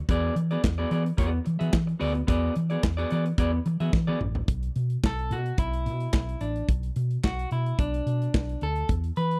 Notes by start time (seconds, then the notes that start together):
0.09 E2 B3 F#4 G#4 D5, kick, closed hi-hat
0.36 E3, closed hi-hat
0.51 B3 F#4 G#4 D5, closed hi-hat
0.63 E2, muted clean electric guitar stroke, kick, snare, clap
0.78 B3 F#4 G#4 D5
0.90 E3 B3 F#4 G#4 D5, closed hi-hat
1.05 muted clean electric guitar stroke, closed hi-hat
1.17 E2 B3 F#4 G#4 D5, kick, closed hi-hat
1.31 muted clean electric guitar stroke
1.45 E3, muted clean electric guitar stroke, closed hi-hat
1.59 E3 B3 F#4 G#4 E5, closed hi-hat
1.73 E3, kick, snare, clap
1.87 muted clean electric guitar stroke, closed hi-hat
1.99 D2 B3 F#4 G#4 D5, open hi-hat
2.14 muted clean electric guitar stroke, closed hi-hat
2.27 E2 B3 F#4 G#4 D5, kick, closed hi-hat
2.55 E3, muted clean electric guitar stroke, closed hi-hat
2.70 B3 F#4 G#4 D5, closed hi-hat
2.83 E2, muted clean electric guitar stroke, kick, snare, clap
2.97 B3 F#4 G#4 D5, closed hi-hat
3.11 E3 B3 F#4 G#4 D5, closed hi-hat
3.26 muted clean electric guitar stroke, closed hi-hat
3.38 E2 B3 F#4 G#4 D5, kick, closed hi-hat
3.53 muted clean electric guitar stroke
3.66 E3, muted clean electric guitar stroke, closed hi-hat
3.80 E3 B3 F#4 G#4 E5, closed hi-hat
3.93 E3, muted clean electric guitar stroke, kick, snare
4.07 B3 F#4 G#4 D5, high tom
4.20 A1, muted clean electric guitar stroke, mid tom
4.35 muted clean electric guitar stroke, floor tom
4.48 B1, kick, closed hi-hat
4.63 closed hi-hat
4.76 B2, closed hi-hat
4.90 closed hi-hat
5.04 B1 A4, kick, snare, clap
5.19 closed hi-hat
5.31 B2 F#4, closed hi-hat
5.46 closed hi-hat
5.58 B1 E4, kick, closed hi-hat
5.73 closed hi-hat
5.86 B2, closed hi-hat
6.00 closed hi-hat
6.13 B1, kick, snare, clap
6.29 closed hi-hat
6.41 A1 D4, closed hi-hat
6.56 closed hi-hat
6.69 B1, kick, closed hi-hat
6.83 closed hi-hat
6.96 B2, closed hi-hat
7.11 closed hi-hat
7.24 B1 F#4, kick, snare, clap
7.39 closed hi-hat
7.51 B2 E4, closed hi-hat
7.66 closed hi-hat
7.79 B1 D4, kick, closed hi-hat
7.94 closed hi-hat
8.06 B2, closed hi-hat
8.22 closed hi-hat
8.34 B1, kick, snare, clap
8.49 closed hi-hat
8.61 D2 A4, closed hi-hat
8.76 closed hi-hat
8.89 E2, kick, closed hi-hat
9.04 closed hi-hat
9.16 E3 B4, closed hi-hat
9.31 closed hi-hat